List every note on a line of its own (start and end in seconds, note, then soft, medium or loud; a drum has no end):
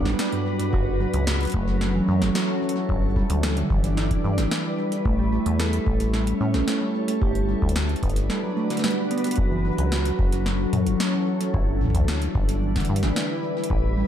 0.00 0.73 G3 medium
0.00 0.73 D4 medium
0.00 1.60 F#4 medium
0.00 1.60 B4 medium
0.00 0.73 D5 medium
0.00 kick medium
0.05 0.15 G1 medium
0.05 0.13 G3 loud
0.05 snare medium
0.19 0.31 G3 loud
0.19 snare loud
0.19 closed hi-hat medium
0.32 0.45 G2 medium
0.32 closed hi-hat soft
0.46 0.53 G3 medium
0.60 0.72 G2 medium
0.60 closed hi-hat medium
0.73 1.07 F#1 loud
0.73 2.89 F#3 medium
0.73 0.85 F#4 medium
0.73 kick loud
0.98 1.07 F#3 medium
0.98 2.89 C#4 medium
1.14 1.47 C#2 loud
1.14 1.26 F#3 medium
1.14 closed hi-hat medium
1.27 snare loud
1.41 closed hi-hat soft
1.43 closed hi-hat soft
1.45 closed hi-hat soft
1.47 closed hi-hat soft
1.50 closed hi-hat soft
1.52 2.01 F#1 loud
1.52 1.67 A3 medium
1.52 kick loud
1.52 closed hi-hat soft
1.56 8.08 E4 medium
1.70 3.76 A4 medium
1.70 2.89 C#5 medium
1.81 1.88 F#3 medium
1.81 snare medium
1.95 2.07 E3 loud
2.08 2.23 F#2 loud
2.08 2.20 F#3 medium
2.22 2.31 F#1 medium
2.22 2.34 F#3 loud
2.22 snare medium
2.22 closed hi-hat medium
2.35 2.47 F#4 medium
2.35 snare loud
2.62 2.69 F#3 medium
2.69 closed hi-hat medium
2.76 2.89 F#3 medium
2.89 3.23 G1 loud
2.89 9.38 G3 medium
2.89 kick loud
3.07 5.05 D4 medium
3.16 3.29 G3 medium
3.16 kick medium
3.30 3.64 D2 loud
3.30 closed hi-hat medium
3.42 3.50 E3 medium
3.42 5.06 D5 medium
3.42 snare loud
3.57 3.70 D3 loud
3.57 closed hi-hat medium
3.70 4.18 G1 medium
3.70 3.82 E3 medium
3.70 kick loud
3.84 3.97 E3 loud
3.84 5.92 B4 medium
3.84 closed hi-hat medium
3.97 4.09 E4 medium
3.97 snare medium
4.11 kick medium
4.11 closed hi-hat medium
4.24 4.39 G2 loud
4.24 4.31 E3 medium
4.38 4.47 G1 medium
4.38 4.51 E3 medium
4.38 snare medium
4.38 closed hi-hat medium
4.51 snare loud
4.78 4.91 G3 medium
4.92 closed hi-hat medium
5.05 5.39 A1 loud
5.05 5.13 A3 medium
5.05 kick loud
5.19 5.32 G3 loud
5.32 5.44 A3 medium
5.46 5.80 E2 loud
5.46 5.59 A3 loud
5.46 closed hi-hat medium
5.59 5.71 A4 medium
5.59 snare loud
5.70 7.22 C#4 medium
5.70 closed hi-hat medium
5.86 6.34 A1 medium
5.86 5.94 A3 medium
5.86 kick loud
6.00 6.13 A3 medium
6.00 8.08 A4 medium
6.00 7.22 C#5 medium
6.00 closed hi-hat medium
6.14 snare medium
6.27 closed hi-hat medium
6.41 6.56 A2 loud
6.41 6.53 C#4 medium
6.54 6.63 A1 medium
6.54 snare medium
6.68 6.75 A3 medium
6.68 snare loud
6.68 closed hi-hat medium
6.81 6.94 G3 loud
6.95 7.06 A3 medium
7.08 7.21 A3 loud
7.08 closed hi-hat medium
7.22 7.55 G1 loud
7.22 7.33 G4 medium
7.22 kick loud
7.35 closed hi-hat soft
7.48 7.56 G3 medium
7.48 10.24 B4 medium
7.62 7.96 D2 loud
7.62 7.75 G3 medium
7.62 kick medium
7.69 closed hi-hat medium
7.76 9.38 D4 medium
7.76 snare loud
7.89 closed hi-hat soft
7.93 9.38 D5 medium
7.93 closed hi-hat soft
8.03 8.30 G1 medium
8.03 8.16 B3 medium
8.03 kick loud
8.03 closed hi-hat soft
8.08 10.24 F#4 medium
8.08 closed hi-hat soft
8.16 closed hi-hat medium
8.30 8.37 G3 medium
8.30 snare medium
8.43 8.56 F#3 loud
8.57 8.69 A3 medium
8.70 8.77 D3 loud
8.70 snare soft
8.70 closed hi-hat medium
8.77 snare soft
8.77 closed hi-hat soft
8.84 8.91 G3 loud
8.84 snare loud
8.84 closed hi-hat soft
8.88 snare soft
8.88 closed hi-hat soft
9.11 9.23 B3 loud
9.11 closed hi-hat medium
9.18 closed hi-hat soft
9.24 9.31 G3 medium
9.24 closed hi-hat medium
9.27 closed hi-hat soft
9.31 closed hi-hat medium
9.36 9.72 F#1 loud
9.36 9.45 F#3 medium
9.36 11.54 F#3 medium
9.36 kick loud
9.36 closed hi-hat medium
9.46 11.54 C#4 medium
9.51 9.64 E3 loud
9.65 9.77 F#3 medium
9.78 10.12 C#2 loud
9.78 9.91 F#3 loud
9.78 closed hi-hat medium
9.92 10.04 F#4 medium
9.92 snare loud
9.97 12.41 A4 medium
10.02 14.07 E4 medium
10.02 closed hi-hat medium
10.19 10.66 F#1 medium
10.19 10.26 F#3 medium
10.19 kick loud
10.32 10.45 F#3 medium
10.32 11.54 C#5 medium
10.32 closed hi-hat medium
10.46 snare medium
10.73 10.88 F#2 loud
10.73 10.85 E3 medium
10.73 closed hi-hat medium
10.73 mid tom medium
10.87 10.96 F#1 medium
10.87 closed hi-hat medium
11.00 11.07 F#3 medium
11.00 snare loud
11.14 11.26 E3 medium
11.27 11.39 F#3 medium
11.41 11.53 F#3 loud
11.41 closed hi-hat medium
11.54 11.88 G1 loud
11.54 14.07 G3 medium
11.54 11.66 E4 medium
11.54 kick loud
11.78 11.88 E3 medium
11.78 13.70 D4 medium
11.78 kick soft
11.78 mid tom soft
11.84 kick soft
11.84 mid tom soft
11.88 kick medium
11.88 mid tom medium
11.91 kick medium
11.95 12.28 D2 loud
11.95 12.07 E3 medium
11.95 kick medium
11.95 closed hi-hat medium
11.98 kick medium
12.01 kick medium
12.05 kick medium
12.05 snare loud
12.22 closed hi-hat medium
12.35 12.82 G1 medium
12.35 12.47 D3 medium
12.35 kick loud
12.46 14.07 B4 medium
12.46 closed hi-hat medium
12.52 13.70 D5 medium
12.62 12.69 E3 medium
12.76 12.89 D3 loud
12.76 kick medium
12.76 snare medium
12.76 closed hi-hat soft
12.80 closed hi-hat soft
12.85 closed hi-hat soft
12.89 13.04 G2 loud
12.89 13.01 E3 medium
12.96 closed hi-hat medium
13.03 13.12 G1 medium
13.03 13.16 E3 loud
13.03 snare medium
13.16 13.28 E4 medium
13.16 snare loud
13.43 13.50 E3 medium
13.57 13.70 E3 medium
13.64 closed hi-hat medium
13.70 14.04 A1 loud
13.70 kick loud
13.97 14.07 G3 medium